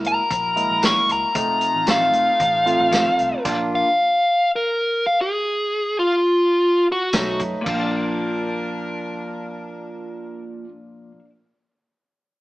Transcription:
0.00 0.20 G#3 medium
0.00 0.20 A#3 medium
0.00 0.20 E4 medium
0.00 1.33 E4 medium
0.00 1.33 F#4 medium
0.00 1.33 A#4 medium
0.04 0.16 F#1 medium
0.04 0.82 A#5 medium
0.04 closed hi-hat medium
0.30 0.66 A#1 medium
0.30 kick loud
0.30 closed hi-hat medium
0.56 1.28 G#3 medium
0.56 1.28 A#3 medium
0.56 1.28 E4 medium
0.56 closed hi-hat medium
0.70 0.94 A#1 medium
0.82 0.99 F#2 medium
0.82 0.99 E3 medium
0.82 0.99 A#3 medium
0.82 1.00 C#4 medium
0.82 1.10 C#6 medium
0.82 snare loud
0.82 closed hi-hat medium
0.82 tambourine loud
1.09 1.21 C#2 medium
1.09 1.87 A#5 medium
1.09 closed hi-hat medium
1.23 muted fingered electric bass stroke soft
1.34 1.71 F1 loud
1.34 3.43 A3 medium
1.34 2.30 A3 medium
1.34 2.30 C4 medium
1.34 3.43 D#4 medium
1.34 2.30 D#4 medium
1.34 3.85 F4 medium
1.34 kick loud
1.34 closed hi-hat medium
1.61 closed hi-hat medium
1.75 2.10 A1 medium
1.87 2.03 F2 medium
1.87 2.04 D#3 medium
1.87 2.04 A3 medium
1.87 2.04 C4 medium
1.87 3.43 F5 medium
1.87 snare loud
1.87 closed hi-hat medium
1.87 tambourine loud
2.13 2.26 F1 medium
2.13 closed hi-hat medium
2.40 2.76 A1 medium
2.40 kick medium
2.40 closed hi-hat medium
2.66 3.38 A3 medium
2.66 3.38 C4 medium
2.66 3.38 F4 medium
2.66 closed hi-hat medium
2.80 3.04 A1 loud
2.92 3.08 F2 medium
2.92 3.09 D#3 medium
2.92 3.09 A3 medium
2.92 3.10 C4 loud
2.92 snare loud
2.92 closed hi-hat medium
2.92 tambourine loud
3.19 3.31 C2 medium
3.19 closed hi-hat medium
3.32 muted fingered electric bass stroke soft
3.45 3.81 A#1 loud
3.45 3.87 A#3 medium
3.45 3.87 D4 medium
3.45 3.88 D4 medium
3.45 3.87 F4 loud
3.45 3.88 A#4 medium
3.45 kick loud
3.45 closed hi-hat medium
3.45 crash medium
3.75 4.50 F5 loud
4.56 5.04 A#4 medium
5.06 5.18 F5 medium
5.21 5.95 G#4 loud
5.99 6.87 F4 medium
6.92 7.41 F#4 loud
7.13 7.37 B1 loud
7.13 7.29 B2 medium
7.13 7.30 F#3 medium
7.13 7.61 A3 medium
7.13 7.30 A3 medium
7.13 7.61 C#4 medium
7.13 7.61 D#4 medium
7.13 7.66 D#4 medium
7.13 7.31 D#4 medium
7.13 7.66 A4 medium
7.13 7.66 B4 medium
7.13 kick medium
7.13 snare loud
7.13 closed hi-hat medium
7.13 tambourine loud
7.40 7.52 F#2 medium
7.40 kick medium
7.40 closed hi-hat medium
7.55 muted fingered electric bass stroke soft
7.61 11.11 A#2 medium
7.61 10.64 A#3 medium
7.61 10.65 D4 medium
7.65 10.66 A#1 loud
7.65 11.19 F3 medium
7.65 10.66 D4 medium
7.65 10.65 F4 medium
7.65 10.68 F4 medium
7.65 10.65 A#4 medium
7.65 kick loud
7.65 crash medium
7.74 11.24 A#3 medium
7.80 11.30 D4 medium

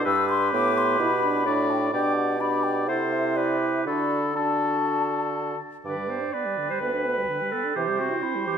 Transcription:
0.00 0.55 D4 medium
0.05 0.52 G2 medium
0.05 1.43 G4 medium
0.05 1.43 B4 medium
0.05 0.28 E6 medium
0.30 0.52 C6 medium
0.53 0.99 A2 medium
0.53 0.99 B3 medium
0.53 0.79 D6 medium
0.78 1.02 C6 medium
0.99 1.48 B2 medium
0.99 1.10 E4 medium
0.99 1.72 B5 medium
1.23 1.46 D4 medium
1.46 1.93 A2 medium
1.46 1.92 D4 medium
1.46 1.92 F#4 medium
1.46 1.92 D5 medium
1.70 1.93 G5 medium
1.93 2.90 B2 medium
1.93 2.37 D4 medium
1.93 2.37 G4 medium
1.93 2.37 D5 medium
1.93 2.16 G5 medium
2.17 2.42 F#5 medium
2.40 2.90 D4 medium
2.40 2.90 G4 medium
2.40 2.87 D5 soft
2.40 2.65 B5 medium
2.63 2.89 G5 medium
2.87 3.86 C3 medium
2.87 3.88 E4 medium
2.87 3.37 A4 medium
2.87 3.38 C5 medium
2.87 3.14 F#5 medium
3.12 3.38 E5 medium
3.36 3.87 G4 soft
3.36 3.86 B4 medium
3.36 3.60 D5 medium
3.61 3.85 E5 medium
3.85 5.56 D3 soft
3.85 4.35 D4 medium
3.85 4.21 F#4 soft
3.85 4.35 A4 soft
3.85 4.37 B5 medium
4.36 5.57 D4 medium
4.36 5.57 F#4 medium
4.36 5.57 A4 soft
4.36 5.60 A5 medium
5.85 6.25 G2 soft
5.85 5.99 D3 soft
5.85 6.11 B4 soft
5.85 6.35 D5 soft
5.85 8.58 G5 soft
5.97 6.11 G3 soft
6.09 6.22 B3 soft
6.09 6.34 C5 soft
6.21 6.36 D4 soft
6.33 6.47 B3 soft
6.33 7.75 B4 soft
6.33 6.69 D5 medium
6.46 6.60 G3 soft
6.58 6.72 D3 soft
6.70 6.82 G3 soft
6.70 6.80 C5 medium
6.81 7.21 D2 soft
6.81 6.95 B3 soft
6.81 7.53 B4 medium
6.94 7.07 D4 soft
7.06 7.19 B3 soft
7.18 7.30 G3 soft
7.29 7.43 D3 soft
7.41 7.55 G3 soft
7.52 7.66 B3 soft
7.52 7.77 A4 medium
7.65 7.76 D4 soft
7.75 8.16 C3 soft
7.75 7.90 E3 soft
7.75 8.01 G4 medium
7.75 8.58 C5 medium
7.88 8.01 G3 soft
8.00 8.13 C4 soft
8.00 8.24 F#4 medium
8.12 8.25 E4 soft
8.23 8.37 C4 soft
8.23 8.46 E4 medium
8.36 8.49 G3 soft
8.47 8.58 E3 soft
8.47 8.57 G4 medium

